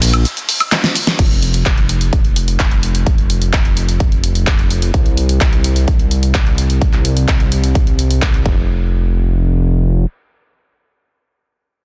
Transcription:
Already playing: A#1
0.02 open hi-hat, ride, shaker
0.14 closed hi-hat, high woodblock, shaker
0.25 closed hi-hat, shaker
0.37 closed hi-hat, shaker
0.49 open hi-hat, ride, shaker
0.60 closed hi-hat, high woodblock, shaker
0.72 snare, clap, closed hi-hat, shaker
0.84 snare, closed hi-hat, shaker
0.95 open hi-hat, ride, shaker
1.07 snare, closed hi-hat, shaker
1.19 F1, kick, closed hi-hat, crash
1.31 closed hi-hat
1.42 closed hi-hat
1.54 closed hi-hat
1.66 kick, clap, closed hi-hat
1.78 closed hi-hat
1.89 closed hi-hat
2.01 closed hi-hat
2.13 kick, closed hi-hat
2.24 closed hi-hat
2.36 closed hi-hat
2.48 closed hi-hat
2.60 kick, clap, closed hi-hat
2.71 closed hi-hat
2.83 closed hi-hat
2.95 closed hi-hat
3.06 kick, closed hi-hat
3.18 closed hi-hat
3.30 closed hi-hat
3.42 closed hi-hat
3.53 kick, clap, closed hi-hat
3.65 closed hi-hat
3.77 closed hi-hat
3.89 closed hi-hat
4.00 kick, closed hi-hat
4.12 closed hi-hat
4.24 closed hi-hat
4.35 closed hi-hat
4.47 kick, clap, closed hi-hat
4.59 closed hi-hat
4.70 closed hi-hat
4.82 closed hi-hat
4.94 C2, kick, closed hi-hat
5.06 closed hi-hat
5.17 closed hi-hat
5.29 closed hi-hat
5.41 kick, clap, closed hi-hat
5.53 closed hi-hat
5.64 closed hi-hat
5.76 closed hi-hat
5.88 kick, closed hi-hat
5.99 closed hi-hat
6.11 closed hi-hat
6.23 closed hi-hat
6.35 kick, clap, closed hi-hat
6.46 closed hi-hat
6.58 closed hi-hat
6.70 closed hi-hat
6.82 kick, closed hi-hat
6.93 clap, closed hi-hat
7.05 closed hi-hat
7.17 closed hi-hat
7.28 kick, clap, closed hi-hat
7.40 closed hi-hat
7.52 closed hi-hat
7.64 closed hi-hat
7.75 kick, closed hi-hat
7.87 closed hi-hat
7.99 closed hi-hat
8.11 closed hi-hat
8.22 kick, clap, closed hi-hat
8.34 closed hi-hat
8.46 F1, kick

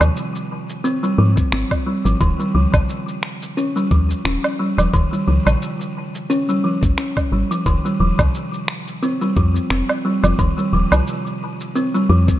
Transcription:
0.00 D#2 C3, low woodblock, shaker
0.17 shaker
0.35 shaker
0.69 shaker
0.84 C4, shaker
1.03 G3, shaker
1.18 G#2 F3
1.37 kick, shaker
1.52 G#1 C4, finger snap, shaker
1.71 kick, low woodblock, shaker
1.86 G3
2.05 G#1 F3, shaker
2.21 D#1 D#3, kick, shaker
2.39 G3, shaker
2.55 C#2 F3
2.74 A#1 C#3, kick, low woodblock, shaker
2.89 shaker
3.08 shaker
3.23 finger snap
3.42 shaker
3.57 C#4, shaker
3.76 G3, shaker
3.91 D#2 F3, kick
4.10 shaker
4.25 D#1 C#4, finger snap, shaker
4.44 low woodblock, shaker
4.59 G3
4.78 D#1 F3, low woodblock, shaker
4.94 D#1 D#3, kick, shaker
5.13 G3, shaker
5.28 C#2 F3
5.46 A#1 C#3, low woodblock, shaker
5.62 shaker
5.81 shaker
6.15 shaker
6.30 C#4, shaker
6.49 G3, shaker
6.64 F3
6.83 G#1, kick, shaker
6.98 C#4, finger snap, shaker
7.17 kick, low woodblock, shaker
7.32 G#1 G3
7.51 F3, shaker
7.66 F1 D#3, kick, shaker
7.85 G3, shaker
8.00 D#1 F3
8.19 C2 C3, kick, low woodblock, shaker
8.35 shaker
8.53 shaker
8.68 finger snap
8.87 shaker
9.03 C4, shaker
9.21 G3, shaker
9.37 F2 F3, kick
9.56 shaker
9.70 F1 C4, finger snap, shaker
9.89 low woodblock, shaker
10.05 G3
10.24 F1 F3, low woodblock, shaker
10.39 F1 D#3, kick, shaker
10.58 G3, shaker
10.73 D#1 F3
10.92 C2 C3, low woodblock, shaker
11.07 shaker
11.26 shaker
11.61 shaker
11.75 C4, shaker
11.94 G3, shaker
12.09 F2 F3
12.28 kick, shaker

